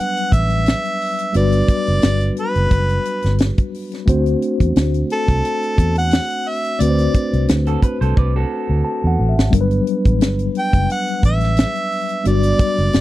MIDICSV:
0, 0, Header, 1, 6, 480
1, 0, Start_track
1, 0, Key_signature, 1, "major"
1, 0, Tempo, 681818
1, 950, Time_signature, 4, 2, 24, 8
1, 9156, End_track
2, 0, Start_track
2, 0, Title_t, "Harmonica"
2, 0, Program_c, 0, 22
2, 0, Note_on_c, 0, 78, 91
2, 235, Note_on_c, 0, 76, 90
2, 245, Note_off_c, 0, 78, 0
2, 953, Note_off_c, 0, 76, 0
2, 964, Note_on_c, 0, 74, 91
2, 1649, Note_off_c, 0, 74, 0
2, 1691, Note_on_c, 0, 71, 79
2, 2373, Note_off_c, 0, 71, 0
2, 3603, Note_on_c, 0, 69, 91
2, 4178, Note_off_c, 0, 69, 0
2, 4211, Note_on_c, 0, 78, 99
2, 4564, Note_on_c, 0, 76, 89
2, 4575, Note_off_c, 0, 78, 0
2, 4795, Note_on_c, 0, 74, 81
2, 4805, Note_off_c, 0, 76, 0
2, 5273, Note_off_c, 0, 74, 0
2, 7451, Note_on_c, 0, 79, 96
2, 7664, Note_off_c, 0, 79, 0
2, 7685, Note_on_c, 0, 78, 90
2, 7901, Note_off_c, 0, 78, 0
2, 7924, Note_on_c, 0, 76, 88
2, 8608, Note_off_c, 0, 76, 0
2, 8644, Note_on_c, 0, 74, 98
2, 9156, Note_off_c, 0, 74, 0
2, 9156, End_track
3, 0, Start_track
3, 0, Title_t, "Clean electric guitar"
3, 0, Program_c, 1, 27
3, 5401, Note_on_c, 1, 69, 58
3, 5406, Note_on_c, 1, 66, 49
3, 5505, Note_off_c, 1, 69, 0
3, 5508, Note_off_c, 1, 66, 0
3, 5512, Note_on_c, 1, 71, 63
3, 5634, Note_off_c, 1, 71, 0
3, 5640, Note_on_c, 1, 72, 71
3, 5644, Note_on_c, 1, 69, 63
3, 5745, Note_off_c, 1, 72, 0
3, 5747, Note_off_c, 1, 69, 0
3, 5753, Note_on_c, 1, 74, 67
3, 5756, Note_on_c, 1, 71, 57
3, 5875, Note_off_c, 1, 74, 0
3, 5877, Note_off_c, 1, 71, 0
3, 5885, Note_on_c, 1, 69, 62
3, 5888, Note_on_c, 1, 66, 56
3, 6574, Note_off_c, 1, 69, 0
3, 6576, Note_off_c, 1, 66, 0
3, 9156, End_track
4, 0, Start_track
4, 0, Title_t, "Tine electric piano"
4, 0, Program_c, 2, 4
4, 0, Control_c, 2, 64, 127
4, 0, Note_on_c, 2, 54, 68
4, 0, Note_on_c, 2, 55, 73
4, 0, Note_on_c, 2, 59, 64
4, 0, Note_on_c, 2, 62, 65
4, 0, Note_on_c, 2, 71, 75
4, 913, Note_off_c, 2, 55, 0
4, 917, Note_off_c, 2, 59, 0
4, 920, Note_off_c, 2, 62, 0
4, 923, Note_off_c, 2, 54, 0
4, 927, Note_off_c, 2, 71, 0
4, 934, Note_on_c, 2, 55, 56
4, 941, Note_on_c, 2, 59, 55
4, 948, Note_on_c, 2, 62, 58
4, 954, Note_on_c, 2, 66, 55
4, 961, Note_on_c, 2, 71, 61
4, 2834, Note_off_c, 2, 55, 0
4, 2838, Note_off_c, 2, 59, 0
4, 2841, Note_off_c, 2, 62, 0
4, 2844, Note_off_c, 2, 66, 0
4, 2848, Note_off_c, 2, 71, 0
4, 2856, Note_on_c, 2, 57, 68
4, 2864, Note_on_c, 2, 60, 64
4, 2867, Note_on_c, 2, 62, 66
4, 2876, Note_on_c, 2, 66, 65
4, 2878, Control_c, 2, 64, 0
4, 2882, Note_on_c, 2, 72, 84
4, 3012, Control_c, 2, 64, 127
4, 4755, Note_off_c, 2, 57, 0
4, 4759, Note_off_c, 2, 60, 0
4, 4761, Note_off_c, 2, 62, 0
4, 4765, Note_off_c, 2, 66, 0
4, 4768, Note_off_c, 2, 72, 0
4, 4779, Note_on_c, 2, 57, 62
4, 4784, Note_on_c, 2, 60, 58
4, 4791, Note_on_c, 2, 62, 52
4, 4798, Note_on_c, 2, 66, 54
4, 4804, Note_on_c, 2, 71, 53
4, 4846, Note_off_c, 2, 71, 0
4, 4852, Note_on_c, 2, 72, 71
4, 6227, Note_on_c, 2, 81, 64
4, 6377, Note_off_c, 2, 81, 0
4, 6386, Note_on_c, 2, 78, 63
4, 6537, Note_off_c, 2, 78, 0
4, 6540, Note_on_c, 2, 76, 54
4, 6676, Note_off_c, 2, 57, 0
4, 6679, Note_off_c, 2, 60, 0
4, 6682, Note_off_c, 2, 62, 0
4, 6685, Note_off_c, 2, 66, 0
4, 6690, Note_on_c, 2, 55, 74
4, 6694, Note_off_c, 2, 76, 0
4, 6698, Note_on_c, 2, 59, 66
4, 6704, Note_on_c, 2, 62, 64
4, 6711, Note_on_c, 2, 54, 71
4, 6713, Note_off_c, 2, 72, 0
4, 6716, Note_on_c, 2, 70, 63
4, 6718, Control_c, 2, 64, 0
4, 6763, Note_off_c, 2, 70, 0
4, 6764, Note_on_c, 2, 71, 84
4, 6854, Control_c, 2, 64, 127
4, 8591, Note_off_c, 2, 55, 0
4, 8595, Note_off_c, 2, 59, 0
4, 8598, Note_off_c, 2, 62, 0
4, 8601, Note_off_c, 2, 54, 0
4, 8616, Note_on_c, 2, 55, 62
4, 8621, Note_on_c, 2, 59, 54
4, 8628, Note_off_c, 2, 71, 0
4, 8628, Note_on_c, 2, 62, 54
4, 8635, Note_on_c, 2, 66, 56
4, 8641, Note_on_c, 2, 74, 72
4, 9156, Note_off_c, 2, 55, 0
4, 9156, Note_off_c, 2, 59, 0
4, 9156, Note_off_c, 2, 62, 0
4, 9156, Note_off_c, 2, 66, 0
4, 9156, Note_off_c, 2, 74, 0
4, 9156, End_track
5, 0, Start_track
5, 0, Title_t, "Fingered electric bass"
5, 0, Program_c, 3, 33
5, 228, Note_on_c, 3, 33, 85
5, 511, Note_off_c, 3, 33, 0
5, 952, Note_on_c, 3, 31, 88
5, 1134, Note_off_c, 3, 31, 0
5, 1324, Note_on_c, 3, 30, 70
5, 1407, Note_off_c, 3, 30, 0
5, 1432, Note_on_c, 3, 31, 77
5, 1615, Note_off_c, 3, 31, 0
5, 1801, Note_on_c, 3, 30, 75
5, 1885, Note_off_c, 3, 30, 0
5, 1910, Note_on_c, 3, 30, 82
5, 2093, Note_off_c, 3, 30, 0
5, 2284, Note_on_c, 3, 31, 81
5, 2465, Note_off_c, 3, 31, 0
5, 2873, Note_on_c, 3, 38, 94
5, 3055, Note_off_c, 3, 38, 0
5, 3241, Note_on_c, 3, 40, 69
5, 3325, Note_off_c, 3, 40, 0
5, 3354, Note_on_c, 3, 38, 89
5, 3536, Note_off_c, 3, 38, 0
5, 3720, Note_on_c, 3, 36, 80
5, 3804, Note_off_c, 3, 36, 0
5, 4072, Note_on_c, 3, 40, 84
5, 4353, Note_off_c, 3, 40, 0
5, 4792, Note_on_c, 3, 38, 95
5, 4975, Note_off_c, 3, 38, 0
5, 5162, Note_on_c, 3, 36, 74
5, 5246, Note_off_c, 3, 36, 0
5, 5276, Note_on_c, 3, 38, 88
5, 5457, Note_off_c, 3, 38, 0
5, 5641, Note_on_c, 3, 36, 75
5, 5725, Note_off_c, 3, 36, 0
5, 5754, Note_on_c, 3, 36, 89
5, 5936, Note_off_c, 3, 36, 0
5, 6121, Note_on_c, 3, 38, 74
5, 6205, Note_off_c, 3, 38, 0
5, 6364, Note_on_c, 3, 40, 74
5, 6446, Note_off_c, 3, 40, 0
5, 6473, Note_on_c, 3, 33, 86
5, 6571, Note_off_c, 3, 33, 0
5, 6601, Note_on_c, 3, 32, 80
5, 6685, Note_off_c, 3, 32, 0
5, 6711, Note_on_c, 3, 31, 97
5, 6894, Note_off_c, 3, 31, 0
5, 7080, Note_on_c, 3, 33, 74
5, 7190, Note_off_c, 3, 33, 0
5, 7190, Note_on_c, 3, 31, 79
5, 7373, Note_off_c, 3, 31, 0
5, 7558, Note_on_c, 3, 30, 76
5, 7643, Note_off_c, 3, 30, 0
5, 7910, Note_on_c, 3, 33, 90
5, 8192, Note_off_c, 3, 33, 0
5, 8631, Note_on_c, 3, 31, 94
5, 8813, Note_off_c, 3, 31, 0
5, 9000, Note_on_c, 3, 30, 77
5, 9084, Note_off_c, 3, 30, 0
5, 9113, Note_on_c, 3, 31, 81
5, 9156, Note_off_c, 3, 31, 0
5, 9156, End_track
6, 0, Start_track
6, 0, Title_t, "Drums"
6, 120, Note_on_c, 9, 42, 47
6, 191, Note_off_c, 9, 42, 0
6, 226, Note_on_c, 9, 36, 79
6, 233, Note_on_c, 9, 42, 63
6, 297, Note_off_c, 9, 36, 0
6, 303, Note_off_c, 9, 42, 0
6, 352, Note_on_c, 9, 42, 49
6, 422, Note_off_c, 9, 42, 0
6, 465, Note_on_c, 9, 42, 78
6, 480, Note_on_c, 9, 38, 89
6, 535, Note_off_c, 9, 42, 0
6, 551, Note_off_c, 9, 38, 0
6, 598, Note_on_c, 9, 42, 41
6, 668, Note_off_c, 9, 42, 0
6, 715, Note_on_c, 9, 46, 72
6, 785, Note_off_c, 9, 46, 0
6, 835, Note_on_c, 9, 42, 54
6, 905, Note_off_c, 9, 42, 0
6, 945, Note_on_c, 9, 42, 83
6, 1015, Note_off_c, 9, 42, 0
6, 1072, Note_on_c, 9, 42, 47
6, 1142, Note_off_c, 9, 42, 0
6, 1184, Note_on_c, 9, 42, 66
6, 1186, Note_on_c, 9, 36, 94
6, 1254, Note_off_c, 9, 42, 0
6, 1256, Note_off_c, 9, 36, 0
6, 1315, Note_on_c, 9, 42, 44
6, 1385, Note_off_c, 9, 42, 0
6, 1423, Note_on_c, 9, 42, 83
6, 1431, Note_on_c, 9, 38, 105
6, 1493, Note_off_c, 9, 42, 0
6, 1501, Note_off_c, 9, 38, 0
6, 1552, Note_on_c, 9, 42, 50
6, 1622, Note_off_c, 9, 42, 0
6, 1666, Note_on_c, 9, 42, 55
6, 1736, Note_off_c, 9, 42, 0
6, 1797, Note_on_c, 9, 42, 43
6, 1868, Note_off_c, 9, 42, 0
6, 1907, Note_on_c, 9, 42, 73
6, 1908, Note_on_c, 9, 36, 90
6, 1978, Note_off_c, 9, 42, 0
6, 1979, Note_off_c, 9, 36, 0
6, 2036, Note_on_c, 9, 42, 48
6, 2106, Note_off_c, 9, 42, 0
6, 2150, Note_on_c, 9, 42, 66
6, 2221, Note_off_c, 9, 42, 0
6, 2269, Note_on_c, 9, 42, 48
6, 2288, Note_on_c, 9, 38, 36
6, 2340, Note_off_c, 9, 42, 0
6, 2359, Note_off_c, 9, 38, 0
6, 2383, Note_on_c, 9, 42, 75
6, 2398, Note_on_c, 9, 38, 89
6, 2453, Note_off_c, 9, 42, 0
6, 2468, Note_off_c, 9, 38, 0
6, 2518, Note_on_c, 9, 42, 44
6, 2521, Note_on_c, 9, 36, 80
6, 2588, Note_off_c, 9, 42, 0
6, 2592, Note_off_c, 9, 36, 0
6, 2636, Note_on_c, 9, 46, 70
6, 2706, Note_off_c, 9, 46, 0
6, 2757, Note_on_c, 9, 42, 54
6, 2770, Note_on_c, 9, 38, 36
6, 2828, Note_off_c, 9, 42, 0
6, 2841, Note_off_c, 9, 38, 0
6, 2870, Note_on_c, 9, 36, 109
6, 2872, Note_on_c, 9, 42, 94
6, 2940, Note_off_c, 9, 36, 0
6, 2942, Note_off_c, 9, 42, 0
6, 2999, Note_on_c, 9, 42, 50
6, 3069, Note_off_c, 9, 42, 0
6, 3113, Note_on_c, 9, 42, 64
6, 3183, Note_off_c, 9, 42, 0
6, 3241, Note_on_c, 9, 36, 81
6, 3245, Note_on_c, 9, 42, 45
6, 3311, Note_off_c, 9, 36, 0
6, 3315, Note_off_c, 9, 42, 0
6, 3350, Note_on_c, 9, 42, 80
6, 3358, Note_on_c, 9, 38, 99
6, 3420, Note_off_c, 9, 42, 0
6, 3428, Note_off_c, 9, 38, 0
6, 3478, Note_on_c, 9, 42, 52
6, 3549, Note_off_c, 9, 42, 0
6, 3591, Note_on_c, 9, 42, 55
6, 3662, Note_off_c, 9, 42, 0
6, 3719, Note_on_c, 9, 36, 75
6, 3722, Note_on_c, 9, 42, 45
6, 3790, Note_off_c, 9, 36, 0
6, 3792, Note_off_c, 9, 42, 0
6, 3836, Note_on_c, 9, 42, 74
6, 3906, Note_off_c, 9, 42, 0
6, 3962, Note_on_c, 9, 42, 49
6, 4033, Note_off_c, 9, 42, 0
6, 4070, Note_on_c, 9, 36, 84
6, 4075, Note_on_c, 9, 42, 66
6, 4140, Note_off_c, 9, 36, 0
6, 4145, Note_off_c, 9, 42, 0
6, 4191, Note_on_c, 9, 42, 46
6, 4261, Note_off_c, 9, 42, 0
6, 4302, Note_on_c, 9, 42, 78
6, 4317, Note_on_c, 9, 38, 97
6, 4373, Note_off_c, 9, 42, 0
6, 4388, Note_off_c, 9, 38, 0
6, 4436, Note_on_c, 9, 42, 44
6, 4506, Note_off_c, 9, 42, 0
6, 4555, Note_on_c, 9, 46, 73
6, 4625, Note_off_c, 9, 46, 0
6, 4678, Note_on_c, 9, 42, 57
6, 4749, Note_off_c, 9, 42, 0
6, 4789, Note_on_c, 9, 42, 91
6, 4859, Note_off_c, 9, 42, 0
6, 4917, Note_on_c, 9, 42, 50
6, 4987, Note_off_c, 9, 42, 0
6, 5029, Note_on_c, 9, 42, 64
6, 5030, Note_on_c, 9, 36, 93
6, 5099, Note_off_c, 9, 42, 0
6, 5101, Note_off_c, 9, 36, 0
6, 5162, Note_on_c, 9, 42, 47
6, 5233, Note_off_c, 9, 42, 0
6, 5269, Note_on_c, 9, 42, 85
6, 5277, Note_on_c, 9, 38, 105
6, 5340, Note_off_c, 9, 42, 0
6, 5347, Note_off_c, 9, 38, 0
6, 5396, Note_on_c, 9, 42, 52
6, 5467, Note_off_c, 9, 42, 0
6, 5509, Note_on_c, 9, 36, 79
6, 5511, Note_on_c, 9, 42, 53
6, 5579, Note_off_c, 9, 36, 0
6, 5582, Note_off_c, 9, 42, 0
6, 5646, Note_on_c, 9, 42, 44
6, 5716, Note_off_c, 9, 42, 0
6, 5752, Note_on_c, 9, 36, 88
6, 5823, Note_off_c, 9, 36, 0
6, 6610, Note_on_c, 9, 38, 85
6, 6681, Note_off_c, 9, 38, 0
6, 6708, Note_on_c, 9, 36, 113
6, 6710, Note_on_c, 9, 42, 96
6, 6779, Note_off_c, 9, 36, 0
6, 6781, Note_off_c, 9, 42, 0
6, 6834, Note_on_c, 9, 42, 46
6, 6905, Note_off_c, 9, 42, 0
6, 6948, Note_on_c, 9, 42, 62
6, 7019, Note_off_c, 9, 42, 0
6, 7078, Note_on_c, 9, 36, 78
6, 7081, Note_on_c, 9, 42, 47
6, 7149, Note_off_c, 9, 36, 0
6, 7151, Note_off_c, 9, 42, 0
6, 7188, Note_on_c, 9, 42, 90
6, 7196, Note_on_c, 9, 38, 97
6, 7259, Note_off_c, 9, 42, 0
6, 7266, Note_off_c, 9, 38, 0
6, 7314, Note_on_c, 9, 42, 51
6, 7384, Note_off_c, 9, 42, 0
6, 7427, Note_on_c, 9, 42, 57
6, 7498, Note_off_c, 9, 42, 0
6, 7556, Note_on_c, 9, 36, 75
6, 7558, Note_on_c, 9, 42, 42
6, 7626, Note_off_c, 9, 36, 0
6, 7629, Note_off_c, 9, 42, 0
6, 7673, Note_on_c, 9, 42, 79
6, 7743, Note_off_c, 9, 42, 0
6, 7798, Note_on_c, 9, 42, 49
6, 7868, Note_off_c, 9, 42, 0
6, 7907, Note_on_c, 9, 36, 86
6, 7913, Note_on_c, 9, 42, 64
6, 7977, Note_off_c, 9, 36, 0
6, 7984, Note_off_c, 9, 42, 0
6, 8030, Note_on_c, 9, 42, 49
6, 8049, Note_on_c, 9, 38, 35
6, 8100, Note_off_c, 9, 42, 0
6, 8119, Note_off_c, 9, 38, 0
6, 8143, Note_on_c, 9, 42, 80
6, 8159, Note_on_c, 9, 38, 94
6, 8214, Note_off_c, 9, 42, 0
6, 8229, Note_off_c, 9, 38, 0
6, 8275, Note_on_c, 9, 42, 42
6, 8346, Note_off_c, 9, 42, 0
6, 8391, Note_on_c, 9, 46, 72
6, 8461, Note_off_c, 9, 46, 0
6, 8511, Note_on_c, 9, 42, 56
6, 8582, Note_off_c, 9, 42, 0
6, 8626, Note_on_c, 9, 42, 82
6, 8696, Note_off_c, 9, 42, 0
6, 8751, Note_on_c, 9, 42, 48
6, 8821, Note_off_c, 9, 42, 0
6, 8865, Note_on_c, 9, 42, 64
6, 8866, Note_on_c, 9, 36, 96
6, 8935, Note_off_c, 9, 42, 0
6, 8937, Note_off_c, 9, 36, 0
6, 8998, Note_on_c, 9, 42, 43
6, 9069, Note_off_c, 9, 42, 0
6, 9104, Note_on_c, 9, 42, 84
6, 9112, Note_on_c, 9, 38, 96
6, 9156, Note_off_c, 9, 38, 0
6, 9156, Note_off_c, 9, 42, 0
6, 9156, End_track
0, 0, End_of_file